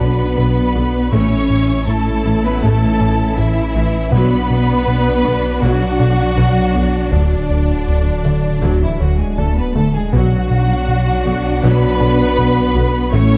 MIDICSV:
0, 0, Header, 1, 11, 480
1, 0, Start_track
1, 0, Key_signature, 2, "minor"
1, 0, Tempo, 750000
1, 724, Time_signature, 4, 2, 24, 8
1, 8561, End_track
2, 0, Start_track
2, 0, Title_t, "Violin section"
2, 0, Program_c, 0, 48
2, 0, Note_on_c, 0, 83, 93
2, 705, Note_off_c, 0, 83, 0
2, 723, Note_on_c, 0, 85, 101
2, 1194, Note_off_c, 0, 85, 0
2, 1199, Note_on_c, 0, 81, 95
2, 1561, Note_off_c, 0, 81, 0
2, 1568, Note_on_c, 0, 83, 99
2, 1683, Note_on_c, 0, 81, 118
2, 1686, Note_off_c, 0, 83, 0
2, 2154, Note_off_c, 0, 81, 0
2, 2160, Note_on_c, 0, 76, 98
2, 2639, Note_on_c, 0, 83, 117
2, 2642, Note_off_c, 0, 76, 0
2, 3583, Note_off_c, 0, 83, 0
2, 3602, Note_on_c, 0, 78, 106
2, 4555, Note_on_c, 0, 74, 89
2, 4563, Note_off_c, 0, 78, 0
2, 5618, Note_off_c, 0, 74, 0
2, 5650, Note_on_c, 0, 76, 70
2, 5765, Note_on_c, 0, 78, 72
2, 5767, Note_off_c, 0, 76, 0
2, 5882, Note_off_c, 0, 78, 0
2, 5885, Note_on_c, 0, 80, 72
2, 6002, Note_off_c, 0, 80, 0
2, 6005, Note_on_c, 0, 81, 76
2, 6125, Note_off_c, 0, 81, 0
2, 6126, Note_on_c, 0, 83, 79
2, 6238, Note_on_c, 0, 81, 77
2, 6245, Note_off_c, 0, 83, 0
2, 6359, Note_off_c, 0, 81, 0
2, 6361, Note_on_c, 0, 80, 75
2, 6476, Note_on_c, 0, 78, 108
2, 6483, Note_off_c, 0, 80, 0
2, 7421, Note_off_c, 0, 78, 0
2, 7439, Note_on_c, 0, 83, 121
2, 8402, Note_off_c, 0, 83, 0
2, 8402, Note_on_c, 0, 85, 121
2, 8561, Note_off_c, 0, 85, 0
2, 8561, End_track
3, 0, Start_track
3, 0, Title_t, "Violin section"
3, 0, Program_c, 1, 48
3, 0, Note_on_c, 1, 71, 83
3, 704, Note_off_c, 1, 71, 0
3, 727, Note_on_c, 1, 73, 90
3, 1196, Note_off_c, 1, 73, 0
3, 1204, Note_on_c, 1, 69, 82
3, 1557, Note_off_c, 1, 69, 0
3, 1567, Note_on_c, 1, 71, 79
3, 1682, Note_on_c, 1, 69, 92
3, 1686, Note_off_c, 1, 71, 0
3, 2154, Note_off_c, 1, 69, 0
3, 2159, Note_on_c, 1, 64, 85
3, 2635, Note_on_c, 1, 71, 105
3, 2642, Note_off_c, 1, 64, 0
3, 3581, Note_off_c, 1, 71, 0
3, 3601, Note_on_c, 1, 66, 101
3, 4563, Note_off_c, 1, 66, 0
3, 4565, Note_on_c, 1, 62, 82
3, 5623, Note_off_c, 1, 62, 0
3, 5652, Note_on_c, 1, 64, 60
3, 5766, Note_off_c, 1, 64, 0
3, 5773, Note_on_c, 1, 66, 62
3, 5887, Note_on_c, 1, 68, 60
3, 5889, Note_off_c, 1, 66, 0
3, 5999, Note_on_c, 1, 69, 71
3, 6006, Note_off_c, 1, 68, 0
3, 6119, Note_off_c, 1, 69, 0
3, 6130, Note_on_c, 1, 71, 65
3, 6242, Note_on_c, 1, 69, 71
3, 6245, Note_off_c, 1, 71, 0
3, 6361, Note_off_c, 1, 69, 0
3, 6361, Note_on_c, 1, 68, 67
3, 6478, Note_on_c, 1, 66, 88
3, 6480, Note_off_c, 1, 68, 0
3, 7422, Note_off_c, 1, 66, 0
3, 7432, Note_on_c, 1, 71, 104
3, 8397, Note_on_c, 1, 73, 101
3, 8398, Note_off_c, 1, 71, 0
3, 8561, Note_off_c, 1, 73, 0
3, 8561, End_track
4, 0, Start_track
4, 0, Title_t, "Synth pluck"
4, 0, Program_c, 2, 84
4, 4, Note_on_c, 2, 62, 60
4, 148, Note_off_c, 2, 62, 0
4, 242, Note_on_c, 2, 71, 59
4, 386, Note_off_c, 2, 71, 0
4, 483, Note_on_c, 2, 66, 61
4, 628, Note_off_c, 2, 66, 0
4, 721, Note_on_c, 2, 57, 87
4, 866, Note_off_c, 2, 57, 0
4, 1445, Note_on_c, 2, 64, 60
4, 1589, Note_off_c, 2, 64, 0
4, 1687, Note_on_c, 2, 57, 92
4, 1830, Note_off_c, 2, 57, 0
4, 1926, Note_on_c, 2, 61, 65
4, 2070, Note_off_c, 2, 61, 0
4, 2165, Note_on_c, 2, 69, 61
4, 2308, Note_off_c, 2, 69, 0
4, 2398, Note_on_c, 2, 64, 64
4, 2544, Note_off_c, 2, 64, 0
4, 2636, Note_on_c, 2, 59, 97
4, 2783, Note_off_c, 2, 59, 0
4, 3356, Note_on_c, 2, 66, 61
4, 3502, Note_off_c, 2, 66, 0
4, 3594, Note_on_c, 2, 59, 89
4, 3741, Note_off_c, 2, 59, 0
4, 3840, Note_on_c, 2, 62, 65
4, 3985, Note_off_c, 2, 62, 0
4, 4080, Note_on_c, 2, 71, 61
4, 4225, Note_off_c, 2, 71, 0
4, 4317, Note_on_c, 2, 66, 64
4, 4463, Note_off_c, 2, 66, 0
4, 4554, Note_on_c, 2, 50, 88
4, 4701, Note_off_c, 2, 50, 0
4, 5279, Note_on_c, 2, 57, 60
4, 5425, Note_off_c, 2, 57, 0
4, 5517, Note_on_c, 2, 50, 89
4, 5663, Note_off_c, 2, 50, 0
4, 5762, Note_on_c, 2, 54, 67
4, 5907, Note_off_c, 2, 54, 0
4, 6004, Note_on_c, 2, 62, 62
4, 6148, Note_off_c, 2, 62, 0
4, 6243, Note_on_c, 2, 57, 61
4, 6388, Note_off_c, 2, 57, 0
4, 6483, Note_on_c, 2, 59, 96
4, 6627, Note_off_c, 2, 59, 0
4, 7204, Note_on_c, 2, 66, 67
4, 7348, Note_off_c, 2, 66, 0
4, 7445, Note_on_c, 2, 59, 98
4, 7589, Note_off_c, 2, 59, 0
4, 7682, Note_on_c, 2, 62, 73
4, 7827, Note_off_c, 2, 62, 0
4, 7923, Note_on_c, 2, 71, 65
4, 8068, Note_off_c, 2, 71, 0
4, 8161, Note_on_c, 2, 66, 69
4, 8306, Note_off_c, 2, 66, 0
4, 8400, Note_on_c, 2, 57, 101
4, 8545, Note_off_c, 2, 57, 0
4, 8561, End_track
5, 0, Start_track
5, 0, Title_t, "Trombone section"
5, 0, Program_c, 3, 61
5, 0, Note_on_c, 3, 54, 61
5, 0, Note_on_c, 3, 62, 63
5, 696, Note_off_c, 3, 54, 0
5, 697, Note_off_c, 3, 62, 0
5, 721, Note_on_c, 3, 52, 80
5, 722, Note_on_c, 3, 61, 77
5, 2617, Note_off_c, 3, 52, 0
5, 2618, Note_off_c, 3, 61, 0
5, 2645, Note_on_c, 3, 54, 81
5, 2645, Note_on_c, 3, 62, 82
5, 6254, Note_off_c, 3, 54, 0
5, 6255, Note_off_c, 3, 62, 0
5, 6482, Note_on_c, 3, 62, 76
5, 6483, Note_on_c, 3, 54, 77
5, 8378, Note_off_c, 3, 54, 0
5, 8378, Note_off_c, 3, 62, 0
5, 8398, Note_on_c, 3, 52, 86
5, 8398, Note_on_c, 3, 61, 89
5, 8561, Note_off_c, 3, 52, 0
5, 8561, Note_off_c, 3, 61, 0
5, 8561, End_track
6, 0, Start_track
6, 0, Title_t, "Cello section"
6, 0, Program_c, 4, 48
6, 0, Note_on_c, 4, 59, 80
6, 701, Note_off_c, 4, 59, 0
6, 724, Note_on_c, 4, 61, 91
6, 1194, Note_off_c, 4, 61, 0
6, 1202, Note_on_c, 4, 57, 79
6, 1563, Note_off_c, 4, 57, 0
6, 1566, Note_on_c, 4, 59, 79
6, 1682, Note_on_c, 4, 57, 89
6, 1685, Note_off_c, 4, 59, 0
6, 2163, Note_off_c, 4, 57, 0
6, 2166, Note_on_c, 4, 52, 84
6, 2636, Note_off_c, 4, 52, 0
6, 2649, Note_on_c, 4, 59, 97
6, 3587, Note_off_c, 4, 59, 0
6, 3601, Note_on_c, 4, 54, 83
6, 4558, Note_on_c, 4, 50, 69
6, 4562, Note_off_c, 4, 54, 0
6, 5619, Note_off_c, 4, 50, 0
6, 5641, Note_on_c, 4, 52, 59
6, 5760, Note_on_c, 4, 54, 59
6, 5763, Note_off_c, 4, 52, 0
6, 5880, Note_off_c, 4, 54, 0
6, 5881, Note_on_c, 4, 56, 60
6, 5996, Note_on_c, 4, 57, 66
6, 6002, Note_off_c, 4, 56, 0
6, 6120, Note_off_c, 4, 57, 0
6, 6122, Note_on_c, 4, 59, 62
6, 6242, Note_on_c, 4, 57, 71
6, 6243, Note_off_c, 4, 59, 0
6, 6360, Note_on_c, 4, 56, 69
6, 6361, Note_off_c, 4, 57, 0
6, 6481, Note_on_c, 4, 54, 83
6, 6482, Note_off_c, 4, 56, 0
6, 7439, Note_on_c, 4, 59, 87
6, 7443, Note_off_c, 4, 54, 0
6, 8402, Note_off_c, 4, 59, 0
6, 8403, Note_on_c, 4, 61, 96
6, 8561, Note_off_c, 4, 61, 0
6, 8561, End_track
7, 0, Start_track
7, 0, Title_t, "French horn section"
7, 0, Program_c, 5, 60
7, 0, Note_on_c, 5, 59, 80
7, 714, Note_on_c, 5, 61, 83
7, 721, Note_off_c, 5, 59, 0
7, 1198, Note_on_c, 5, 57, 79
7, 1199, Note_off_c, 5, 61, 0
7, 1554, Note_off_c, 5, 57, 0
7, 1562, Note_on_c, 5, 59, 79
7, 1683, Note_off_c, 5, 59, 0
7, 1688, Note_on_c, 5, 57, 86
7, 2162, Note_on_c, 5, 52, 86
7, 2166, Note_off_c, 5, 57, 0
7, 2634, Note_off_c, 5, 52, 0
7, 2637, Note_on_c, 5, 59, 106
7, 3601, Note_off_c, 5, 59, 0
7, 3606, Note_on_c, 5, 54, 91
7, 4559, Note_on_c, 5, 50, 77
7, 4565, Note_off_c, 5, 54, 0
7, 5534, Note_off_c, 5, 50, 0
7, 5642, Note_on_c, 5, 52, 57
7, 5761, Note_off_c, 5, 52, 0
7, 5761, Note_on_c, 5, 54, 65
7, 5883, Note_off_c, 5, 54, 0
7, 5886, Note_on_c, 5, 56, 62
7, 6000, Note_on_c, 5, 57, 71
7, 6005, Note_off_c, 5, 56, 0
7, 6122, Note_off_c, 5, 57, 0
7, 6134, Note_on_c, 5, 59, 63
7, 6247, Note_off_c, 5, 59, 0
7, 6255, Note_on_c, 5, 57, 67
7, 6370, Note_off_c, 5, 57, 0
7, 6381, Note_on_c, 5, 56, 66
7, 6493, Note_off_c, 5, 56, 0
7, 6500, Note_on_c, 5, 54, 85
7, 7450, Note_on_c, 5, 59, 99
7, 7452, Note_off_c, 5, 54, 0
7, 8388, Note_off_c, 5, 59, 0
7, 8411, Note_on_c, 5, 61, 102
7, 8561, Note_off_c, 5, 61, 0
7, 8561, End_track
8, 0, Start_track
8, 0, Title_t, "Viola section"
8, 0, Program_c, 6, 48
8, 0, Note_on_c, 6, 62, 57
8, 5, Note_on_c, 6, 50, 46
8, 57, Note_off_c, 6, 50, 0
8, 238, Note_on_c, 6, 50, 47
8, 289, Note_off_c, 6, 50, 0
8, 487, Note_on_c, 6, 50, 54
8, 538, Note_off_c, 6, 50, 0
8, 700, Note_off_c, 6, 62, 0
8, 720, Note_on_c, 6, 57, 84
8, 720, Note_on_c, 6, 64, 75
8, 945, Note_off_c, 6, 57, 0
8, 1441, Note_on_c, 6, 52, 57
8, 1493, Note_off_c, 6, 52, 0
8, 1677, Note_on_c, 6, 57, 81
8, 1904, Note_off_c, 6, 57, 0
8, 1922, Note_on_c, 6, 52, 69
8, 1973, Note_off_c, 6, 52, 0
8, 2158, Note_on_c, 6, 49, 59
8, 2209, Note_off_c, 6, 49, 0
8, 2400, Note_on_c, 6, 52, 62
8, 2452, Note_off_c, 6, 52, 0
8, 2617, Note_off_c, 6, 64, 0
8, 2642, Note_on_c, 6, 54, 89
8, 2643, Note_on_c, 6, 62, 87
8, 2866, Note_off_c, 6, 54, 0
8, 3365, Note_on_c, 6, 50, 55
8, 3416, Note_off_c, 6, 50, 0
8, 3601, Note_on_c, 6, 54, 76
8, 3826, Note_off_c, 6, 54, 0
8, 3838, Note_on_c, 6, 50, 53
8, 3889, Note_off_c, 6, 50, 0
8, 4079, Note_on_c, 6, 50, 53
8, 4130, Note_off_c, 6, 50, 0
8, 4319, Note_on_c, 6, 50, 53
8, 4370, Note_off_c, 6, 50, 0
8, 4556, Note_on_c, 6, 54, 63
8, 4783, Note_off_c, 6, 54, 0
8, 5277, Note_on_c, 6, 50, 41
8, 5329, Note_off_c, 6, 50, 0
8, 5515, Note_on_c, 6, 54, 74
8, 5743, Note_off_c, 6, 54, 0
8, 5758, Note_on_c, 6, 50, 45
8, 5809, Note_off_c, 6, 50, 0
8, 6006, Note_on_c, 6, 50, 50
8, 6057, Note_off_c, 6, 50, 0
8, 6245, Note_on_c, 6, 50, 49
8, 6297, Note_off_c, 6, 50, 0
8, 6356, Note_off_c, 6, 62, 0
8, 6486, Note_on_c, 6, 54, 79
8, 6489, Note_on_c, 6, 62, 72
8, 6708, Note_off_c, 6, 54, 0
8, 7203, Note_on_c, 6, 50, 62
8, 7255, Note_off_c, 6, 50, 0
8, 7445, Note_on_c, 6, 54, 82
8, 7668, Note_off_c, 6, 54, 0
8, 7682, Note_on_c, 6, 50, 59
8, 7733, Note_off_c, 6, 50, 0
8, 7920, Note_on_c, 6, 50, 58
8, 7971, Note_off_c, 6, 50, 0
8, 8167, Note_on_c, 6, 50, 66
8, 8218, Note_off_c, 6, 50, 0
8, 8381, Note_off_c, 6, 62, 0
8, 8402, Note_on_c, 6, 57, 95
8, 8402, Note_on_c, 6, 64, 86
8, 8561, Note_off_c, 6, 57, 0
8, 8561, Note_off_c, 6, 64, 0
8, 8561, End_track
9, 0, Start_track
9, 0, Title_t, "Analog synth bass"
9, 0, Program_c, 7, 38
9, 5, Note_on_c, 7, 47, 59
9, 149, Note_off_c, 7, 47, 0
9, 244, Note_on_c, 7, 47, 66
9, 388, Note_off_c, 7, 47, 0
9, 487, Note_on_c, 7, 59, 62
9, 630, Note_off_c, 7, 59, 0
9, 720, Note_on_c, 7, 45, 85
9, 865, Note_off_c, 7, 45, 0
9, 962, Note_on_c, 7, 45, 64
9, 1107, Note_off_c, 7, 45, 0
9, 1201, Note_on_c, 7, 45, 62
9, 1346, Note_off_c, 7, 45, 0
9, 1445, Note_on_c, 7, 57, 64
9, 1589, Note_off_c, 7, 57, 0
9, 1685, Note_on_c, 7, 45, 91
9, 1829, Note_off_c, 7, 45, 0
9, 1926, Note_on_c, 7, 45, 65
9, 2070, Note_off_c, 7, 45, 0
9, 2165, Note_on_c, 7, 45, 71
9, 2309, Note_off_c, 7, 45, 0
9, 2402, Note_on_c, 7, 57, 66
9, 2547, Note_off_c, 7, 57, 0
9, 2637, Note_on_c, 7, 47, 89
9, 2783, Note_off_c, 7, 47, 0
9, 2884, Note_on_c, 7, 47, 65
9, 3028, Note_off_c, 7, 47, 0
9, 3120, Note_on_c, 7, 47, 68
9, 3265, Note_off_c, 7, 47, 0
9, 3361, Note_on_c, 7, 59, 68
9, 3506, Note_off_c, 7, 59, 0
9, 3597, Note_on_c, 7, 47, 90
9, 3743, Note_off_c, 7, 47, 0
9, 3839, Note_on_c, 7, 47, 63
9, 3985, Note_off_c, 7, 47, 0
9, 4081, Note_on_c, 7, 47, 66
9, 4226, Note_off_c, 7, 47, 0
9, 4323, Note_on_c, 7, 59, 64
9, 4467, Note_off_c, 7, 59, 0
9, 4559, Note_on_c, 7, 38, 90
9, 4705, Note_off_c, 7, 38, 0
9, 4800, Note_on_c, 7, 38, 67
9, 4946, Note_off_c, 7, 38, 0
9, 5045, Note_on_c, 7, 38, 63
9, 5189, Note_off_c, 7, 38, 0
9, 5286, Note_on_c, 7, 50, 65
9, 5429, Note_off_c, 7, 50, 0
9, 5526, Note_on_c, 7, 38, 88
9, 5669, Note_off_c, 7, 38, 0
9, 5762, Note_on_c, 7, 38, 64
9, 5907, Note_off_c, 7, 38, 0
9, 6003, Note_on_c, 7, 38, 67
9, 6148, Note_off_c, 7, 38, 0
9, 6244, Note_on_c, 7, 50, 69
9, 6388, Note_off_c, 7, 50, 0
9, 6483, Note_on_c, 7, 47, 95
9, 6628, Note_off_c, 7, 47, 0
9, 6724, Note_on_c, 7, 47, 73
9, 6868, Note_off_c, 7, 47, 0
9, 6966, Note_on_c, 7, 47, 69
9, 7110, Note_off_c, 7, 47, 0
9, 7209, Note_on_c, 7, 59, 74
9, 7351, Note_off_c, 7, 59, 0
9, 7447, Note_on_c, 7, 47, 97
9, 7590, Note_off_c, 7, 47, 0
9, 7686, Note_on_c, 7, 47, 67
9, 7830, Note_off_c, 7, 47, 0
9, 7924, Note_on_c, 7, 47, 73
9, 8068, Note_off_c, 7, 47, 0
9, 8163, Note_on_c, 7, 59, 68
9, 8307, Note_off_c, 7, 59, 0
9, 8404, Note_on_c, 7, 45, 103
9, 8548, Note_off_c, 7, 45, 0
9, 8561, End_track
10, 0, Start_track
10, 0, Title_t, "Double bass section"
10, 0, Program_c, 8, 48
10, 0, Note_on_c, 8, 35, 50
10, 52, Note_off_c, 8, 35, 0
10, 244, Note_on_c, 8, 35, 52
10, 295, Note_off_c, 8, 35, 0
10, 482, Note_on_c, 8, 35, 51
10, 534, Note_off_c, 8, 35, 0
10, 724, Note_on_c, 8, 33, 74
10, 775, Note_off_c, 8, 33, 0
10, 1441, Note_on_c, 8, 33, 59
10, 1492, Note_off_c, 8, 33, 0
10, 1679, Note_on_c, 8, 33, 89
10, 1730, Note_off_c, 8, 33, 0
10, 1921, Note_on_c, 8, 33, 60
10, 1972, Note_off_c, 8, 33, 0
10, 2160, Note_on_c, 8, 33, 63
10, 2211, Note_off_c, 8, 33, 0
10, 2400, Note_on_c, 8, 33, 62
10, 2452, Note_off_c, 8, 33, 0
10, 2639, Note_on_c, 8, 35, 80
10, 2690, Note_off_c, 8, 35, 0
10, 3362, Note_on_c, 8, 35, 53
10, 3413, Note_off_c, 8, 35, 0
10, 3603, Note_on_c, 8, 35, 83
10, 3654, Note_off_c, 8, 35, 0
10, 3842, Note_on_c, 8, 35, 52
10, 3893, Note_off_c, 8, 35, 0
10, 4082, Note_on_c, 8, 35, 55
10, 4134, Note_off_c, 8, 35, 0
10, 4326, Note_on_c, 8, 35, 52
10, 4377, Note_off_c, 8, 35, 0
10, 4565, Note_on_c, 8, 38, 64
10, 4616, Note_off_c, 8, 38, 0
10, 5285, Note_on_c, 8, 38, 47
10, 5336, Note_off_c, 8, 38, 0
10, 5521, Note_on_c, 8, 38, 73
10, 5573, Note_off_c, 8, 38, 0
10, 5759, Note_on_c, 8, 38, 46
10, 5811, Note_off_c, 8, 38, 0
10, 6002, Note_on_c, 8, 38, 50
10, 6053, Note_off_c, 8, 38, 0
10, 6243, Note_on_c, 8, 38, 48
10, 6294, Note_off_c, 8, 38, 0
10, 6485, Note_on_c, 8, 35, 69
10, 6536, Note_off_c, 8, 35, 0
10, 7204, Note_on_c, 8, 35, 54
10, 7255, Note_off_c, 8, 35, 0
10, 7445, Note_on_c, 8, 35, 87
10, 7496, Note_off_c, 8, 35, 0
10, 7686, Note_on_c, 8, 35, 54
10, 7737, Note_off_c, 8, 35, 0
10, 7927, Note_on_c, 8, 35, 60
10, 7978, Note_off_c, 8, 35, 0
10, 8165, Note_on_c, 8, 35, 59
10, 8216, Note_off_c, 8, 35, 0
10, 8403, Note_on_c, 8, 33, 84
10, 8454, Note_off_c, 8, 33, 0
10, 8561, End_track
11, 0, Start_track
11, 0, Title_t, "Detuned saw bass"
11, 0, Program_c, 10, 39
11, 0, Note_on_c, 10, 35, 62
11, 725, Note_on_c, 10, 33, 70
11, 735, Note_off_c, 10, 35, 0
11, 2644, Note_on_c, 10, 35, 69
11, 2654, Note_off_c, 10, 33, 0
11, 4563, Note_on_c, 10, 26, 66
11, 4573, Note_off_c, 10, 35, 0
11, 6486, Note_on_c, 10, 35, 69
11, 6496, Note_off_c, 10, 26, 0
11, 8406, Note_on_c, 10, 33, 80
11, 8415, Note_off_c, 10, 35, 0
11, 8561, Note_off_c, 10, 33, 0
11, 8561, End_track
0, 0, End_of_file